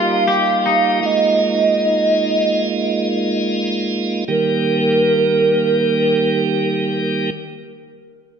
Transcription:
Already playing: G3 A#3 D#4 F4 G4 F5
0.28 G4 F5
0.66 D#4
1.03 G#3 F4 D#5
4.28 D#3 G3 A#3 G4 A#4

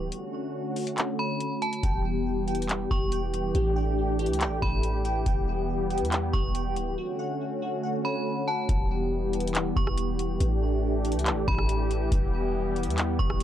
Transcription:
Already playing: D1 G3 B3 G4
0.12 D3 A3 C#4 F#4, closed hi-hat
0.76 closed hi-hat, open hi-hat
0.87 closed hi-hat
0.98 clap, closed hi-hat
1.19 B5
1.40 closed hi-hat
1.62 A5, closed hi-hat
1.73 closed hi-hat
1.83 E1 E3 G3 B3 G4 G5, kick, closed hi-hat
2.48 G5, closed hi-hat
2.55 closed hi-hat
2.62 closed hi-hat
2.69 clap, closed hi-hat
2.91 E1 G4 C#6, kick
3.12 G5, closed hi-hat
3.34 closed hi-hat
3.55 A1 A3 D4 G4, closed hi-hat
3.76 G5
4.19 G4, closed hi-hat
4.26 C#2, closed hi-hat
4.33 closed hi-hat
4.41 G5, clap, closed hi-hat
4.46 A1
4.62 A1 A4 B5, kick
4.83 closed hi-hat
5.05 G5, closed hi-hat
5.26 E1 G3 B3 G5, kick, closed hi-hat
5.90 G5, closed hi-hat
5.98 E2, closed hi-hat
6.05 closed hi-hat
6.12 clap, closed hi-hat
6.33 E1 G4 C#6, kick
6.55 G5, closed hi-hat
6.76 D1, closed hi-hat
6.98 D3 A3 C#4 F#4
7.19 F#5
7.62 F#4
7.83 F#5
8.05 C#5 B5
8.48 F#5 A5
8.69 E1 E3 G3 B3 G4, kick, closed hi-hat
9.33 closed hi-hat
9.40 closed hi-hat
9.47 closed hi-hat
9.55 clap, closed hi-hat
9.76 E1 C#6, kick
9.87 cross-stick
9.98 closed hi-hat
10.19 closed hi-hat
10.40 A1 E3 A3 D4, closed hi-hat
11.05 closed hi-hat
11.12 C#2, closed hi-hat
11.19 closed hi-hat
11.26 clap, closed hi-hat
11.31 A1
11.48 A1 B5, kick
11.58 cross-stick
11.69 closed hi-hat
11.91 closed hi-hat
12.12 E1 G3 B3, kick, closed hi-hat
12.76 closed hi-hat
12.83 E2, closed hi-hat
12.90 closed hi-hat
12.98 clap, closed hi-hat
13.19 E1 C#6, kick
13.30 cross-stick

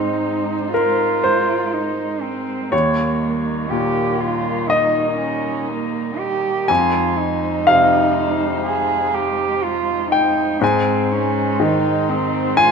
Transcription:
Already playing: G#2 D#3 G#3 C4 D#4 C5
0.73 F4 A#4
1.24 C5
1.73 D#4
2.22 C4
2.70 D#2 A#3 C#5
2.75 G3 D#4 A#4
3.69 A#2 G4
4.20 F4
4.69 D#4 D#5
5.18 C#4
5.70 A#3
6.18 G4
6.68 F2 G#3 D#4 F4 C5 G#5
7.19 D#4
7.67 C3 F5
8.65 G#4
9.14 G4
9.63 F4
10.11 D#4 G5
10.61 G#2 G#3 C4 D#4 C5 G#5
11.12 C#4
11.60 D#3 D#4
12.10 C4
12.57 F4 G#5

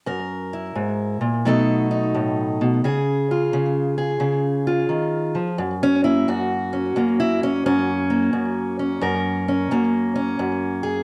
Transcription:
0.06 F#2 A#4
0.53 E4
0.75 G#2
1.21 A#2
1.45 B2 F#3 A3 D#4 A4
1.91 D#4
2.14 A2
2.61 B2
2.84 C#3 G#4
3.31 F4
3.53 C#3
3.98 G#4
4.20 C#3
4.67 F4
4.89 D#3
5.35 F3
5.58 F#2
5.83 C#4
6.04 A#3 E4
6.28 F#2 F#4
6.73 C#4
6.96 F#2 A#3
7.20 E4
7.43 C#4
7.66 F#2 C#4
8.10 A#3
8.33 F#2
8.79 C#4
9.01 F#2 A#4
9.48 C#4
9.71 F#2 A#3
10.16 C#4
10.39 F#2
10.83 G#4

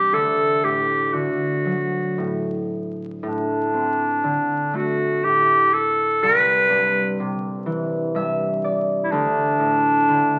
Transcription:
Already playing: C2 G2 E3 G4
0.12 D2 A4
0.63 A2 G4
1.13 D3 F#4
1.65 F#3
2.18 A2
3.23 A2 D4
3.74 C4
4.24 D3
4.74 A3 F#4
5.24 A2 G4
5.73 A4
6.23 C2 B4
6.70 G2
7.20 C3
7.66 E3
8.15 G2 E5
8.64 D5
9.04 E4
9.11 D2 D4
9.59 A2
10.08 D3

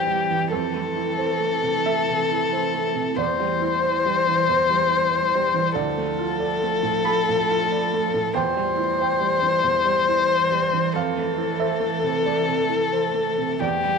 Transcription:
Already playing: E2 E3 G3 C4 E4 G4 C5
0.07 G3
0.31 E3
0.49 F2 A3 A4
0.74 A3
0.96 E4
1.18 C5
1.40 A3
1.62 C3
1.86 A3 E5
2.09 C3
2.32 E4
2.53 C5
2.74 A3
2.95 C3
3.17 E2 E3 G3 E4 C5 D5
3.39 G3
3.62 E4
3.83 C5
4.05 G3
4.27 E3
4.48 E2 C5
4.70 G3
4.91 E4
5.12 C5
5.35 G3
5.54 E3
5.75 D2 F3 A3 F4 A4 D5
5.97 A3
6.19 F4
6.40 D5
6.63 A3
6.83 A2
7.05 A3 B5
7.28 A2
7.37 A5
7.50 F4
7.72 D5
7.93 A3
8.14 A2
8.34 E2 E3 G3 C5 G5
8.38 E3
8.56 G3
8.77 E4
8.99 C5 G5
9.21 G3
9.42 E3
9.63 E2
9.86 G3
10.09 E4
10.29 C5
10.51 G3
10.73 E3
10.95 F2 A3 A4 F5
11.17 A3
11.38 E4
11.60 C5 E5
11.80 A3
12.03 C3
12.25 A3 D5
12.47 C3
12.70 E4
12.93 C5
13.14 A3
13.38 C3
13.61 E2 E3 G3 E4 G4 C5 D5
13.85 G3

